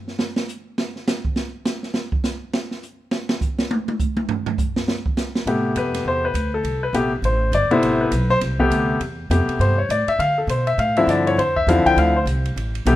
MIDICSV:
0, 0, Header, 1, 5, 480
1, 0, Start_track
1, 0, Key_signature, 0, "minor"
1, 0, Tempo, 293255
1, 1265, Time_signature, 4, 2, 24, 8
1, 8946, Tempo, 295712
1, 21105, End_track
2, 0, Start_track
2, 0, Title_t, "Grand piano"
2, 0, Program_c, 0, 0
2, 8954, Note_on_c, 0, 48, 59
2, 8958, Note_on_c, 0, 57, 55
2, 8961, Note_on_c, 0, 59, 57
2, 8963, Note_on_c, 0, 67, 64
2, 9446, Note_on_c, 0, 71, 76
2, 9881, Note_off_c, 0, 71, 0
2, 9939, Note_on_c, 0, 72, 81
2, 10203, Note_off_c, 0, 72, 0
2, 10217, Note_on_c, 0, 71, 74
2, 10272, Note_off_c, 0, 48, 0
2, 10275, Note_off_c, 0, 57, 0
2, 10276, Note_off_c, 0, 59, 0
2, 10277, Note_off_c, 0, 67, 0
2, 10651, Note_off_c, 0, 71, 0
2, 10693, Note_on_c, 0, 69, 75
2, 11129, Note_off_c, 0, 69, 0
2, 11163, Note_on_c, 0, 71, 77
2, 11341, Note_off_c, 0, 71, 0
2, 11342, Note_on_c, 0, 57, 57
2, 11343, Note_on_c, 0, 48, 62
2, 11347, Note_on_c, 0, 59, 57
2, 11353, Note_on_c, 0, 67, 73
2, 11603, Note_off_c, 0, 57, 0
2, 11604, Note_off_c, 0, 48, 0
2, 11606, Note_off_c, 0, 59, 0
2, 11609, Note_off_c, 0, 67, 0
2, 11844, Note_on_c, 0, 72, 77
2, 12279, Note_off_c, 0, 72, 0
2, 12322, Note_on_c, 0, 74, 85
2, 12587, Note_on_c, 0, 57, 70
2, 12588, Note_on_c, 0, 64, 90
2, 12589, Note_on_c, 0, 59, 72
2, 12591, Note_on_c, 0, 48, 81
2, 12594, Note_off_c, 0, 74, 0
2, 12615, Note_on_c, 0, 72, 74
2, 13050, Note_off_c, 0, 72, 0
2, 13077, Note_on_c, 0, 71, 72
2, 13221, Note_off_c, 0, 57, 0
2, 13221, Note_off_c, 0, 64, 0
2, 13222, Note_off_c, 0, 59, 0
2, 13223, Note_off_c, 0, 48, 0
2, 13521, Note_off_c, 0, 71, 0
2, 13553, Note_on_c, 0, 72, 98
2, 13667, Note_off_c, 0, 72, 0
2, 14025, Note_on_c, 0, 48, 76
2, 14027, Note_on_c, 0, 59, 67
2, 14031, Note_on_c, 0, 57, 67
2, 14033, Note_on_c, 0, 67, 81
2, 14660, Note_off_c, 0, 48, 0
2, 14661, Note_off_c, 0, 59, 0
2, 14663, Note_off_c, 0, 57, 0
2, 14664, Note_off_c, 0, 67, 0
2, 15180, Note_on_c, 0, 59, 54
2, 15183, Note_on_c, 0, 48, 56
2, 15184, Note_on_c, 0, 67, 64
2, 15186, Note_on_c, 0, 57, 51
2, 15667, Note_on_c, 0, 72, 78
2, 15895, Note_off_c, 0, 59, 0
2, 15896, Note_off_c, 0, 48, 0
2, 15896, Note_off_c, 0, 67, 0
2, 15897, Note_off_c, 0, 57, 0
2, 15948, Note_off_c, 0, 72, 0
2, 15953, Note_on_c, 0, 73, 70
2, 16137, Note_off_c, 0, 73, 0
2, 16158, Note_on_c, 0, 74, 75
2, 16433, Note_off_c, 0, 74, 0
2, 16444, Note_on_c, 0, 76, 87
2, 16623, Note_off_c, 0, 76, 0
2, 16623, Note_on_c, 0, 77, 92
2, 16906, Note_off_c, 0, 77, 0
2, 16924, Note_on_c, 0, 69, 53
2, 17103, Note_off_c, 0, 69, 0
2, 17118, Note_on_c, 0, 72, 72
2, 17394, Note_off_c, 0, 72, 0
2, 17395, Note_on_c, 0, 76, 76
2, 17579, Note_off_c, 0, 76, 0
2, 17589, Note_on_c, 0, 77, 83
2, 17869, Note_off_c, 0, 77, 0
2, 17883, Note_on_c, 0, 76, 77
2, 17887, Note_on_c, 0, 60, 64
2, 17888, Note_on_c, 0, 53, 66
2, 17889, Note_on_c, 0, 64, 82
2, 17892, Note_on_c, 0, 50, 72
2, 18063, Note_off_c, 0, 76, 0
2, 18088, Note_on_c, 0, 74, 72
2, 18359, Note_off_c, 0, 74, 0
2, 18371, Note_on_c, 0, 73, 82
2, 18513, Note_off_c, 0, 60, 0
2, 18514, Note_off_c, 0, 53, 0
2, 18514, Note_off_c, 0, 64, 0
2, 18515, Note_off_c, 0, 50, 0
2, 18547, Note_off_c, 0, 73, 0
2, 18552, Note_on_c, 0, 72, 84
2, 18831, Note_off_c, 0, 72, 0
2, 18845, Note_on_c, 0, 76, 87
2, 19024, Note_off_c, 0, 76, 0
2, 19036, Note_on_c, 0, 50, 68
2, 19041, Note_on_c, 0, 53, 67
2, 19042, Note_on_c, 0, 77, 75
2, 19045, Note_on_c, 0, 64, 81
2, 19048, Note_on_c, 0, 60, 64
2, 19316, Note_off_c, 0, 77, 0
2, 19329, Note_on_c, 0, 79, 94
2, 19506, Note_off_c, 0, 79, 0
2, 19530, Note_on_c, 0, 77, 81
2, 19744, Note_off_c, 0, 50, 0
2, 19746, Note_off_c, 0, 53, 0
2, 19748, Note_off_c, 0, 64, 0
2, 19750, Note_off_c, 0, 60, 0
2, 19800, Note_off_c, 0, 77, 0
2, 19817, Note_on_c, 0, 72, 73
2, 19924, Note_off_c, 0, 72, 0
2, 20958, Note_on_c, 0, 57, 69
2, 20961, Note_on_c, 0, 48, 75
2, 20964, Note_on_c, 0, 59, 66
2, 20966, Note_on_c, 0, 67, 84
2, 21105, Note_off_c, 0, 48, 0
2, 21105, Note_off_c, 0, 57, 0
2, 21105, Note_off_c, 0, 59, 0
2, 21105, Note_off_c, 0, 67, 0
2, 21105, End_track
3, 0, Start_track
3, 0, Title_t, "Upright bass"
3, 0, Program_c, 1, 32
3, 8932, Note_on_c, 1, 45, 78
3, 9402, Note_off_c, 1, 45, 0
3, 9415, Note_on_c, 1, 41, 85
3, 9884, Note_off_c, 1, 41, 0
3, 9894, Note_on_c, 1, 40, 83
3, 10354, Note_off_c, 1, 40, 0
3, 10364, Note_on_c, 1, 38, 92
3, 10837, Note_off_c, 1, 38, 0
3, 10844, Note_on_c, 1, 36, 79
3, 11311, Note_off_c, 1, 36, 0
3, 11321, Note_on_c, 1, 34, 85
3, 11787, Note_off_c, 1, 34, 0
3, 11796, Note_on_c, 1, 33, 88
3, 12267, Note_off_c, 1, 33, 0
3, 12277, Note_on_c, 1, 31, 90
3, 12558, Note_off_c, 1, 31, 0
3, 12761, Note_on_c, 1, 33, 79
3, 13236, Note_off_c, 1, 33, 0
3, 13248, Note_on_c, 1, 35, 90
3, 13720, Note_off_c, 1, 35, 0
3, 13734, Note_on_c, 1, 36, 87
3, 14195, Note_off_c, 1, 36, 0
3, 14205, Note_on_c, 1, 38, 89
3, 14679, Note_off_c, 1, 38, 0
3, 14687, Note_on_c, 1, 40, 80
3, 15160, Note_off_c, 1, 40, 0
3, 15168, Note_on_c, 1, 41, 85
3, 15445, Note_off_c, 1, 41, 0
3, 15643, Note_on_c, 1, 43, 86
3, 16119, Note_off_c, 1, 43, 0
3, 16128, Note_on_c, 1, 45, 82
3, 16406, Note_off_c, 1, 45, 0
3, 16609, Note_on_c, 1, 50, 80
3, 17065, Note_off_c, 1, 50, 0
3, 17074, Note_on_c, 1, 47, 91
3, 17555, Note_off_c, 1, 47, 0
3, 17570, Note_on_c, 1, 45, 82
3, 18031, Note_off_c, 1, 45, 0
3, 18041, Note_on_c, 1, 43, 88
3, 18518, Note_off_c, 1, 43, 0
3, 18529, Note_on_c, 1, 41, 83
3, 19003, Note_off_c, 1, 41, 0
3, 19014, Note_on_c, 1, 40, 89
3, 19290, Note_off_c, 1, 40, 0
3, 19494, Note_on_c, 1, 38, 90
3, 19959, Note_off_c, 1, 38, 0
3, 19969, Note_on_c, 1, 36, 89
3, 20443, Note_off_c, 1, 36, 0
3, 20464, Note_on_c, 1, 33, 83
3, 20930, Note_off_c, 1, 33, 0
3, 20942, Note_on_c, 1, 35, 93
3, 21105, Note_off_c, 1, 35, 0
3, 21105, End_track
4, 0, Start_track
4, 0, Title_t, "Muted upright bass strokes"
4, 12572, Note_on_c, 9, 29, 40
4, 12735, Note_off_c, 9, 29, 0
4, 15461, Note_on_c, 9, 29, 36
4, 15623, Note_off_c, 9, 29, 0
4, 16429, Note_on_c, 9, 29, 38
4, 16591, Note_off_c, 9, 29, 0
4, 19319, Note_on_c, 9, 29, 35
4, 19481, Note_off_c, 9, 29, 0
4, 21105, End_track
5, 0, Start_track
5, 0, Title_t, "Drums"
5, 126, Note_on_c, 9, 38, 47
5, 290, Note_off_c, 9, 38, 0
5, 308, Note_on_c, 9, 38, 112
5, 471, Note_off_c, 9, 38, 0
5, 594, Note_on_c, 9, 38, 108
5, 758, Note_off_c, 9, 38, 0
5, 793, Note_on_c, 9, 44, 62
5, 956, Note_off_c, 9, 44, 0
5, 1277, Note_on_c, 9, 38, 102
5, 1441, Note_off_c, 9, 38, 0
5, 1569, Note_on_c, 9, 38, 42
5, 1733, Note_off_c, 9, 38, 0
5, 1761, Note_on_c, 9, 38, 116
5, 1761, Note_on_c, 9, 44, 65
5, 1925, Note_off_c, 9, 38, 0
5, 1925, Note_off_c, 9, 44, 0
5, 2041, Note_on_c, 9, 36, 79
5, 2204, Note_off_c, 9, 36, 0
5, 2225, Note_on_c, 9, 38, 105
5, 2389, Note_off_c, 9, 38, 0
5, 2709, Note_on_c, 9, 38, 104
5, 2709, Note_on_c, 9, 44, 58
5, 2873, Note_off_c, 9, 38, 0
5, 2873, Note_off_c, 9, 44, 0
5, 2995, Note_on_c, 9, 38, 58
5, 3159, Note_off_c, 9, 38, 0
5, 3173, Note_on_c, 9, 38, 111
5, 3337, Note_off_c, 9, 38, 0
5, 3473, Note_on_c, 9, 36, 92
5, 3637, Note_off_c, 9, 36, 0
5, 3664, Note_on_c, 9, 38, 105
5, 3664, Note_on_c, 9, 44, 67
5, 3827, Note_off_c, 9, 38, 0
5, 3827, Note_off_c, 9, 44, 0
5, 4149, Note_on_c, 9, 38, 113
5, 4313, Note_off_c, 9, 38, 0
5, 4439, Note_on_c, 9, 38, 55
5, 4603, Note_off_c, 9, 38, 0
5, 4628, Note_on_c, 9, 44, 62
5, 4792, Note_off_c, 9, 44, 0
5, 5096, Note_on_c, 9, 38, 104
5, 5260, Note_off_c, 9, 38, 0
5, 5387, Note_on_c, 9, 38, 115
5, 5551, Note_off_c, 9, 38, 0
5, 5585, Note_on_c, 9, 36, 89
5, 5586, Note_on_c, 9, 44, 64
5, 5749, Note_off_c, 9, 36, 0
5, 5749, Note_off_c, 9, 44, 0
5, 5869, Note_on_c, 9, 38, 111
5, 6033, Note_off_c, 9, 38, 0
5, 6068, Note_on_c, 9, 48, 116
5, 6232, Note_off_c, 9, 48, 0
5, 6354, Note_on_c, 9, 48, 106
5, 6518, Note_off_c, 9, 48, 0
5, 6538, Note_on_c, 9, 44, 60
5, 6541, Note_on_c, 9, 36, 85
5, 6701, Note_off_c, 9, 44, 0
5, 6704, Note_off_c, 9, 36, 0
5, 6820, Note_on_c, 9, 48, 106
5, 6984, Note_off_c, 9, 48, 0
5, 7017, Note_on_c, 9, 43, 110
5, 7180, Note_off_c, 9, 43, 0
5, 7306, Note_on_c, 9, 43, 113
5, 7469, Note_off_c, 9, 43, 0
5, 7497, Note_on_c, 9, 44, 67
5, 7500, Note_on_c, 9, 36, 89
5, 7661, Note_off_c, 9, 44, 0
5, 7664, Note_off_c, 9, 36, 0
5, 7796, Note_on_c, 9, 38, 107
5, 7960, Note_off_c, 9, 38, 0
5, 7988, Note_on_c, 9, 38, 113
5, 8152, Note_off_c, 9, 38, 0
5, 8278, Note_on_c, 9, 36, 84
5, 8441, Note_off_c, 9, 36, 0
5, 8466, Note_on_c, 9, 38, 100
5, 8466, Note_on_c, 9, 44, 64
5, 8629, Note_off_c, 9, 38, 0
5, 8629, Note_off_c, 9, 44, 0
5, 8764, Note_on_c, 9, 38, 106
5, 8927, Note_off_c, 9, 38, 0
5, 8955, Note_on_c, 9, 51, 57
5, 9118, Note_off_c, 9, 51, 0
5, 9420, Note_on_c, 9, 44, 56
5, 9420, Note_on_c, 9, 51, 64
5, 9582, Note_off_c, 9, 44, 0
5, 9582, Note_off_c, 9, 51, 0
5, 9724, Note_on_c, 9, 38, 51
5, 9724, Note_on_c, 9, 51, 66
5, 9886, Note_off_c, 9, 38, 0
5, 9886, Note_off_c, 9, 51, 0
5, 10382, Note_on_c, 9, 44, 58
5, 10382, Note_on_c, 9, 51, 66
5, 10544, Note_off_c, 9, 44, 0
5, 10544, Note_off_c, 9, 51, 0
5, 10861, Note_on_c, 9, 51, 57
5, 11023, Note_off_c, 9, 51, 0
5, 11345, Note_on_c, 9, 44, 55
5, 11345, Note_on_c, 9, 51, 70
5, 11508, Note_off_c, 9, 44, 0
5, 11508, Note_off_c, 9, 51, 0
5, 11824, Note_on_c, 9, 51, 60
5, 11986, Note_off_c, 9, 51, 0
5, 12297, Note_on_c, 9, 44, 49
5, 12297, Note_on_c, 9, 51, 67
5, 12459, Note_off_c, 9, 44, 0
5, 12459, Note_off_c, 9, 51, 0
5, 12590, Note_on_c, 9, 51, 44
5, 12753, Note_off_c, 9, 51, 0
5, 12779, Note_on_c, 9, 51, 64
5, 12941, Note_off_c, 9, 51, 0
5, 13248, Note_on_c, 9, 44, 64
5, 13248, Note_on_c, 9, 51, 68
5, 13411, Note_off_c, 9, 44, 0
5, 13411, Note_off_c, 9, 51, 0
5, 13532, Note_on_c, 9, 38, 39
5, 13695, Note_off_c, 9, 38, 0
5, 13729, Note_on_c, 9, 38, 38
5, 13729, Note_on_c, 9, 51, 67
5, 13892, Note_off_c, 9, 38, 0
5, 13892, Note_off_c, 9, 51, 0
5, 14028, Note_on_c, 9, 36, 55
5, 14191, Note_off_c, 9, 36, 0
5, 14220, Note_on_c, 9, 44, 54
5, 14220, Note_on_c, 9, 51, 67
5, 14382, Note_off_c, 9, 44, 0
5, 14382, Note_off_c, 9, 51, 0
5, 14693, Note_on_c, 9, 51, 61
5, 14856, Note_off_c, 9, 51, 0
5, 15186, Note_on_c, 9, 44, 59
5, 15186, Note_on_c, 9, 51, 70
5, 15348, Note_off_c, 9, 44, 0
5, 15348, Note_off_c, 9, 51, 0
5, 15475, Note_on_c, 9, 51, 47
5, 15637, Note_off_c, 9, 51, 0
5, 15671, Note_on_c, 9, 51, 57
5, 15833, Note_off_c, 9, 51, 0
5, 16145, Note_on_c, 9, 44, 56
5, 16145, Note_on_c, 9, 51, 64
5, 16308, Note_off_c, 9, 44, 0
5, 16308, Note_off_c, 9, 51, 0
5, 16436, Note_on_c, 9, 51, 47
5, 16599, Note_off_c, 9, 51, 0
5, 16629, Note_on_c, 9, 51, 63
5, 16791, Note_off_c, 9, 51, 0
5, 17107, Note_on_c, 9, 44, 60
5, 17107, Note_on_c, 9, 51, 67
5, 17269, Note_off_c, 9, 44, 0
5, 17269, Note_off_c, 9, 51, 0
5, 17393, Note_on_c, 9, 51, 45
5, 17555, Note_off_c, 9, 51, 0
5, 17586, Note_on_c, 9, 51, 60
5, 17748, Note_off_c, 9, 51, 0
5, 17873, Note_on_c, 9, 51, 47
5, 18035, Note_off_c, 9, 51, 0
5, 18071, Note_on_c, 9, 44, 54
5, 18071, Note_on_c, 9, 51, 63
5, 18233, Note_off_c, 9, 44, 0
5, 18233, Note_off_c, 9, 51, 0
5, 18370, Note_on_c, 9, 51, 46
5, 18532, Note_off_c, 9, 51, 0
5, 18561, Note_on_c, 9, 51, 59
5, 18723, Note_off_c, 9, 51, 0
5, 18845, Note_on_c, 9, 36, 49
5, 19007, Note_off_c, 9, 36, 0
5, 19042, Note_on_c, 9, 44, 65
5, 19042, Note_on_c, 9, 51, 66
5, 19204, Note_off_c, 9, 44, 0
5, 19204, Note_off_c, 9, 51, 0
5, 19323, Note_on_c, 9, 36, 56
5, 19331, Note_on_c, 9, 51, 43
5, 19485, Note_off_c, 9, 36, 0
5, 19493, Note_off_c, 9, 51, 0
5, 19515, Note_on_c, 9, 51, 58
5, 19677, Note_off_c, 9, 51, 0
5, 19993, Note_on_c, 9, 44, 52
5, 19993, Note_on_c, 9, 51, 60
5, 20155, Note_off_c, 9, 44, 0
5, 20155, Note_off_c, 9, 51, 0
5, 20291, Note_on_c, 9, 51, 49
5, 20453, Note_off_c, 9, 51, 0
5, 20484, Note_on_c, 9, 51, 61
5, 20647, Note_off_c, 9, 51, 0
5, 20771, Note_on_c, 9, 51, 49
5, 20934, Note_off_c, 9, 51, 0
5, 20955, Note_on_c, 9, 44, 50
5, 20955, Note_on_c, 9, 51, 77
5, 21105, Note_off_c, 9, 44, 0
5, 21105, Note_off_c, 9, 51, 0
5, 21105, End_track
0, 0, End_of_file